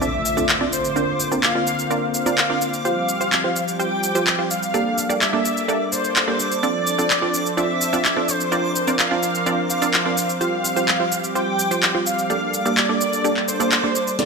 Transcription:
Already playing: analog synth pad D3 A3 C4 F4 C5, synth texture D6, impact
0.01 synth pluck C4 D4 F4 A4 D5, analog synth lead E5, shaker
0.25 shaker
0.37 synth pluck C4 D4 F4 A4 D5, shaker
0.49 clap, shaker
0.61 synth pluck C4 D4 F4 A4 D5
0.73 analog synth lead C5, shaker
0.85 shaker
0.96 analog synth pad A#3, synth pluck C4 D4 F4 A#4 D5, shaker
1.20 shaker
1.32 synth pluck C4 D4 F4 A#4 D5, shaker
1.43 analog synth lead F5, clap, shaker
1.55 synth pluck C4 D4 F4 A#4 D5
1.67 shaker
1.79 shaker
1.91 synth pluck C4 D4 F4 A#4 D5, shaker
2.14 analog synth lead F5, shaker
2.26 synth pluck C4 D4 F4 A#4 D5, shaker
2.38 clap, shaker
2.50 synth pluck C4 D4 F4 A#4 D5
2.61 shaker
2.74 shaker
2.85 analog synth pad F3 G3 G4, synth pluck F4 G4 C5, analog synth lead F5, shaker
3.09 shaker
3.21 synth pluck F4 G4 C5, shaker
3.32 clap, shaker
3.44 synth pluck F4 G4 C5
3.56 shaker
3.68 shaker
3.79 synth pluck F4 G4 C5, analog synth lead G5, shaker
4.03 shaker
4.15 synth pluck F4 G4 C5, shaker
4.27 clap, shaker
4.39 synth pluck F4 G4 C5
4.50 analog synth lead F5, shaker
4.63 shaker
4.74 analog synth pad A#3 D4 A4 D5, synth pluck A#3 D4 G4 A4 D5, shaker
4.98 shaker
5.09 synth pluck A#3 D4 G4 A4 D5, shaker
5.21 analog synth lead E5, clap, shaker
5.33 synth pluck A#3 D4 G4 A4 D5
5.45 shaker
5.57 shaker
5.68 synth pluck A#3 D4 G4 A4 D5, shaker
5.92 analog synth lead C5, shaker
6.04 shaker
6.16 clap, shaker
6.28 synth pluck A#3 D4 G4 A4 D5
6.40 shaker
6.52 shaker
6.63 analog synth pad F3 C4 C5, synth pluck C4 D4 F4 A4 D5, analog synth lead D5, shaker
6.87 shaker
6.99 synth pluck C4 D4 F4 A4 D5, shaker
7.10 clap, shaker
7.22 synth pluck C4 D4 F4 A4 D5
7.34 shaker
7.46 shaker
7.57 synth pluck C4 D4 F4 A4 D5, analog synth lead E5, shaker
7.81 shaker
7.93 synth pluck C4 D4 F4 A4 D5, shaker
8.05 clap, shaker
8.17 synth pluck C4 D4 F4 A4 D5
8.28 analog synth lead C5, shaker
8.40 shaker
8.52 synth pluck C4 D4 F4 A#4 D5, analog synth pad C4 A#4, shaker
8.76 shaker
8.87 synth pluck C4 D4 F4 A#4 D5, shaker
8.99 analog synth lead F5, clap, shaker
9.11 synth pluck C4 D4 F4 A#4 D5
9.23 shaker
9.35 shaker
9.46 synth pluck C4 D4 F4 A#4 D5, shaker
9.70 analog synth lead F5, shaker
9.82 synth pluck C4 D4 F4 A#4 D5, shaker
9.94 clap, shaker
10.06 synth pluck C4 D4 F4 A#4 D5
10.17 shaker
10.29 shaker
10.41 analog synth pad G3 G4, synth pluck F4 G4 C5, analog synth lead F5, shaker
10.65 shaker
10.76 synth pluck F4 G4 C5, shaker
10.88 clap, shaker
11.00 synth pluck F4 G4 C5
11.12 shaker
11.24 shaker
11.35 synth pluck F4 G4 C5, analog synth lead G5, shaker
11.59 shaker
11.71 synth pluck F4 G4 C5, shaker
11.83 clap, shaker
11.95 synth pluck F4 G4 C5
12.06 analog synth lead F5, shaker
12.19 shaker
12.30 synth pluck A#3 D4 G4 A4 D5, analog synth pad A#3 D4 A4 D5, shaker
12.54 shaker
12.66 synth pluck A#3 D4 G4 A4 D5, shaker
12.77 analog synth lead D5, clap, shaker
12.89 synth pluck A#3 D4 G4 A4 D5
13.01 shaker
13.13 shaker
13.24 synth pluck A#3 D4 G4 A4 D5, shaker
13.37 clap
13.48 analog synth lead C5, shaker
13.60 synth pluck A#3 D4 G4 A4 D5, shaker
13.72 clap, shaker
13.84 synth pluck A#3 D4 G4 A4 D5
13.95 shaker
14.07 shaker
14.19 detuned saw bass D2, analog synth pad C3 F3 A3 D4 F4, synth pluck C4 D4 F4 A4 D5, analog synth lead D5, snare, closed hi-hat, shaker

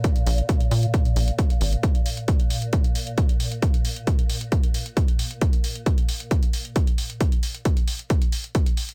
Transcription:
Already playing: synth drone A#2
0.04 kick, closed hi-hat
0.16 closed hi-hat
0.26 analog synth bass A#1, open hi-hat
0.38 closed hi-hat
0.49 kick, closed hi-hat
0.60 closed hi-hat
0.71 analog synth bass A#2, open hi-hat
0.83 closed hi-hat
0.94 kick, closed hi-hat
1.05 closed hi-hat
1.16 analog synth bass A#1, open hi-hat
1.28 closed hi-hat
1.39 kick, closed hi-hat
1.50 closed hi-hat
1.61 analog synth bass G#1, open hi-hat
1.73 closed hi-hat
1.83 kick, closed hi-hat
1.95 closed hi-hat
2.06 open hi-hat
2.17 closed hi-hat
2.28 kick, closed hi-hat
2.40 closed hi-hat
2.50 open hi-hat
2.62 closed hi-hat
2.73 kick, closed hi-hat
2.84 closed hi-hat
2.95 open hi-hat
3.07 closed hi-hat
3.18 kick, closed hi-hat
3.29 closed hi-hat
3.40 open hi-hat
3.52 closed hi-hat
3.62 kick, closed hi-hat
3.74 closed hi-hat
3.85 open hi-hat
3.96 closed hi-hat
4.07 kick, closed hi-hat
4.19 closed hi-hat
4.30 open hi-hat
4.41 closed hi-hat
4.52 kick, closed hi-hat
4.63 closed hi-hat
4.74 open hi-hat
4.86 closed hi-hat
4.97 kick, closed hi-hat
5.08 closed hi-hat
5.19 open hi-hat
5.31 closed hi-hat
5.41 kick, closed hi-hat
5.53 closed hi-hat
5.64 open hi-hat
5.75 closed hi-hat
5.86 kick, closed hi-hat
5.98 closed hi-hat
6.09 open hi-hat
6.20 closed hi-hat
6.31 kick, closed hi-hat
6.43 closed hi-hat
6.53 open hi-hat
6.65 closed hi-hat
6.76 kick, closed hi-hat
6.87 closed hi-hat
6.98 open hi-hat
7.10 closed hi-hat
7.21 kick, closed hi-hat
7.32 closed hi-hat
7.43 open hi-hat
7.55 closed hi-hat
7.65 kick, closed hi-hat
7.77 closed hi-hat
7.88 open hi-hat
7.99 closed hi-hat
8.10 kick, closed hi-hat
8.22 closed hi-hat
8.32 open hi-hat
8.44 closed hi-hat
8.55 kick, closed hi-hat
8.66 closed hi-hat
8.77 open hi-hat
8.89 closed hi-hat

